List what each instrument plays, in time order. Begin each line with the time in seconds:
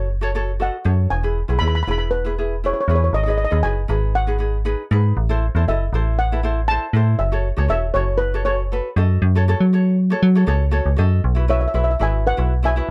Already playing: fm bass F#1
0.21 ukulele F#4 A4 C#5
0.35 ukulele F#4 A4 C#5
0.60 ukulele F#4 A4 D#5, steel pan F#5
0.84 fm bass F#2, ukulele F#4 A4 C#5
1.10 fm bass E1, steel pan G#5
1.23 ukulele E4 G#4 B4
1.48 fm bass B1, ukulele E4 G#4 B4
1.59 fm bass D#2, ukulele E4 B4, steel pan B5
1.63 ukulele G#4
1.68 steel pan B5
1.75 steel pan B5
1.83 steel pan B5
1.87 fm bass E1, ukulele E4 G#4 B4, steel pan B5
1.98 steel pan B5
2.11 steel pan B4
2.25 ukulele E4 G#4 B4
2.38 ukulele E4 G#4 B4
2.64 ukulele E4 G#4 B4, steel pan C#5
2.74 steel pan C#5
2.80 steel pan C#5
2.88 fm bass E2, ukulele E4 G#4 B4, steel pan C#5
2.95 steel pan C#5
3.04 steel pan C#5
3.13 fm bass G#1, steel pan D#5
3.23 ukulele D#4 G#4, steel pan D#5
3.28 ukulele B4, steel pan D#5
3.38 steel pan D#5
3.45 steel pan D#5
3.50 fm bass D#2, ukulele D#4 G#4 B4, steel pan D#5
3.63 fm bass F#1, ukulele D#4 G#4 B4, steel pan G#5
3.88 fm bass G#1, ukulele D#4 G#4 B4
4.15 steel pan F#5
4.27 ukulele D#4 G#4 B4
4.39 ukulele D#4 G#4 B4
4.65 ukulele D#4 G#4 B4
4.91 fm bass G#2, ukulele D#4 G#4 B4
5.17 fm bass A1
5.29 ukulele E4 A4 C5
5.55 fm bass E2, ukulele E4 A4 C5
5.68 fm bass F#1, ukulele E4 A4 D#5, steel pan E5
5.93 fm bass A1, ukulele E4 A4 C5
6.19 steel pan F#5
6.32 ukulele E4 A4 B4
6.43 ukulele E4 A4 C5
6.68 ukulele E4 A4 C5, steel pan A5
6.93 fm bass A2, ukulele E4 A4 C5
7.19 fm bass F#1, steel pan E5
7.32 ukulele F#4 A4 C#5
7.57 fm bass C#2, ukulele F#4 A4 C#5
7.68 fm bass E1, ukulele F#4 A4 C#5, steel pan E5
7.94 fm bass F#1, ukulele F#4 A4 C#5, steel pan C#5
8.18 steel pan B4
8.34 ukulele F#4 A4 C#5
8.45 ukulele F#4 A4 C#5, steel pan C#5
8.72 ukulele F#4 A4 B4
8.96 fm bass F#2, ukulele F#4 A4 D#5
9.22 fm bass F#2
9.35 ukulele F#4 A4 C#5
9.48 ukulele F#4 A4 C#5
9.60 fm bass F#3
9.73 ukulele F#4 A4 C#5
10.10 ukulele F#4 A4 C#5
10.23 fm bass F#3
10.35 ukulele F#4 A4 C#5
10.46 fm bass C#2, ukulele F#4 A4 C#5
10.71 ukulele F#4 A4 C#5
10.86 fm bass C#2
10.96 fm bass F#2, ukulele F#4 A4 D#5
11.24 fm bass B1
11.35 ukulele E4 F#4 B4
11.48 ukulele E4 F#4 B4, steel pan C#5 E5
11.61 steel pan E5
11.68 steel pan E5
11.74 fm bass B1, ukulele E4 F#4 B4, steel pan E5
11.84 steel pan E5
11.91 steel pan E5
11.99 fm bass G#1, ukulele E4 F#4 B4, steel pan E5 G#5
12.27 steel pan B4 F#5
12.37 fm bass B1, ukulele E4 F#4 B4
12.63 ukulele E4 F#4 B4, steel pan E5 G#5
12.76 ukulele E4 F#4 B4